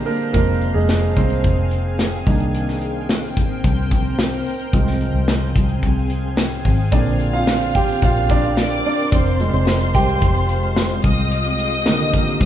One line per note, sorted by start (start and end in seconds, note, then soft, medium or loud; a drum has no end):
0.00 0.36 D3 medium
0.00 0.36 G3 medium
0.00 0.34 G#3 medium
0.00 0.08 A#3 medium
0.00 0.35 C4 medium
0.00 0.32 D4 medium
0.00 0.36 G4 medium
0.00 0.36 G#4 medium
0.00 0.06 A#4 medium
0.00 0.32 C5 medium
0.00 2.23 F5 medium
0.00 0.32 A#5 medium
0.06 0.14 A#3 medium
0.06 0.12 A#4 medium
0.06 open hi-hat medium
0.20 closed hi-hat soft
0.33 0.72 F1 medium
0.33 2.22 F3 medium
0.33 0.74 G#3 soft
0.33 0.73 A#3 medium
0.33 2.25 C4 medium
0.33 1.16 C4 medium
0.33 2.25 G#4 medium
0.33 0.72 A#4 medium
0.33 2.25 G#5 medium
0.33 kick loud
0.33 closed hi-hat medium
0.62 closed hi-hat medium
0.74 1.14 F1 medium
0.74 1.14 G#3 medium
0.74 1.17 G#4 medium
0.89 snare medium
0.89 closed hi-hat medium
1.16 1.42 C2 medium
1.16 2.23 C4 medium
1.16 2.22 C5 medium
1.16 kick medium
1.16 closed hi-hat medium
1.30 closed hi-hat soft
1.44 2.23 F1 medium
1.44 kick medium
1.44 closed hi-hat medium
1.71 closed hi-hat medium
1.99 snare loud
1.99 closed hi-hat medium
2.26 3.60 C2 loud
2.26 4.42 D#3 medium
2.26 4.42 A#3 soft
2.26 11.01 C4 medium
2.26 4.43 D4 medium
2.26 4.71 A#4 medium
2.26 4.72 C5 medium
2.26 4.72 G5 medium
2.26 kick loud
2.26 open hi-hat medium
2.40 closed hi-hat soft
2.55 closed hi-hat medium
2.68 snare soft
2.82 closed hi-hat medium
3.09 snare medium
3.09 closed hi-hat medium
3.37 kick medium
3.37 closed hi-hat medium
3.64 4.42 C2 loud
3.64 kick medium
3.64 closed hi-hat medium
3.91 kick medium
3.91 closed hi-hat medium
4.19 snare loud
4.19 closed hi-hat medium
4.46 open hi-hat medium
4.59 closed hi-hat medium
4.73 5.12 C2 medium
4.73 6.89 F3 medium
4.73 6.89 G#3 soft
4.73 6.89 C4 medium
4.73 6.91 G#4 medium
4.73 9.09 F5 medium
4.73 6.91 G#5 medium
4.73 kick loud
4.73 closed hi-hat medium
4.87 snare soft
5.01 closed hi-hat medium
5.14 5.53 C2 medium
5.28 snare medium
5.28 closed hi-hat medium
5.56 5.81 C2 medium
5.56 kick medium
5.56 closed hi-hat medium
5.69 closed hi-hat soft
5.83 6.61 C2 loud
5.83 kick medium
5.83 closed hi-hat medium
6.10 closed hi-hat medium
6.37 snare loud
6.37 closed hi-hat medium
6.65 6.91 G#1 medium
6.65 kick medium
6.65 open hi-hat medium
6.92 7.98 A#1 loud
6.92 7.29 D3 soft
6.92 7.29 A#3 soft
6.92 7.30 C4 medium
6.92 7.31 D4 medium
6.92 8.54 F4 medium
6.92 9.11 A#4 medium
6.92 7.35 D5 medium
6.92 9.10 D5 medium
6.92 8.54 F5 medium
6.92 kick loud
6.92 closed hi-hat medium
6.92 shaker medium
7.06 shaker medium
7.20 closed hi-hat medium
7.33 7.73 F4 medium
7.33 7.76 F5 loud
7.33 shaker medium
7.47 snare medium
7.47 closed hi-hat medium
7.47 shaker medium
7.61 shaker medium
7.75 8.01 G4 medium
7.75 8.03 G5 medium
7.75 kick medium
7.75 closed hi-hat medium
7.89 closed hi-hat soft
7.89 shaker medium
8.02 8.81 A#1 loud
8.02 8.29 F4 medium
8.02 8.31 F5 medium
8.02 kick medium
8.02 closed hi-hat medium
8.02 shaker medium
8.16 shaker soft
8.29 8.82 D4 medium
8.29 8.85 D5 medium
8.29 kick medium
8.29 closed hi-hat medium
8.29 shaker medium
8.43 shaker soft
8.57 9.11 D5 medium
8.57 9.12 D6 medium
8.57 snare loud
8.57 closed hi-hat medium
8.57 shaker medium
8.71 shaker soft
8.85 9.11 D4 medium
8.85 9.14 D5 medium
8.85 open hi-hat medium
8.99 shaker soft
9.12 9.51 F1 loud
9.12 11.03 G#3 medium
9.12 9.40 C4 medium
9.12 11.03 F4 medium
9.12 11.01 C5 medium
9.12 9.52 C5 medium
9.12 11.03 F5 medium
9.12 11.00 C6 medium
9.12 kick loud
9.12 closed hi-hat medium
9.12 shaker medium
9.25 shaker soft
9.40 9.76 F3 medium
9.40 9.77 G#3 medium
9.40 9.52 C4 medium
9.40 closed hi-hat medium
9.53 9.92 F1 loud
9.53 9.92 C4 medium
9.53 9.96 C5 medium
9.53 shaker medium
9.67 snare loud
9.67 closed hi-hat medium
9.67 shaker medium
9.80 shaker medium
9.95 10.20 C2 medium
9.95 11.01 G4 medium
9.95 11.00 G5 loud
9.95 kick medium
9.95 closed hi-hat medium
10.08 shaker medium
10.22 11.00 F1 loud
10.22 kick medium
10.22 closed hi-hat medium
10.22 shaker medium
10.35 shaker soft
10.49 closed hi-hat medium
10.49 shaker soft
10.63 shaker soft
10.76 snare loud
10.76 closed hi-hat medium
10.76 shaker medium
10.90 shaker soft
11.03 12.37 C2 loud
11.03 12.45 C4 medium
11.03 12.45 G4 medium
11.03 12.45 A#4 medium
11.03 12.45 C5 medium
11.03 12.45 D#5 medium
11.03 12.45 D#6 loud
11.03 kick loud
11.03 open hi-hat medium
11.18 shaker soft
11.31 closed hi-hat medium
11.31 shaker medium
11.44 shaker medium
11.59 closed hi-hat medium
11.72 shaker soft
11.85 12.45 D3 medium
11.85 12.45 D#3 soft
11.85 12.45 A#3 medium
11.85 snare loud
11.85 closed hi-hat medium
11.85 shaker medium
11.99 shaker medium
12.14 kick medium
12.14 closed hi-hat medium
12.27 closed hi-hat medium
12.27 shaker medium
12.40 12.45 C2 loud
12.40 kick medium
12.40 closed hi-hat medium
12.40 shaker medium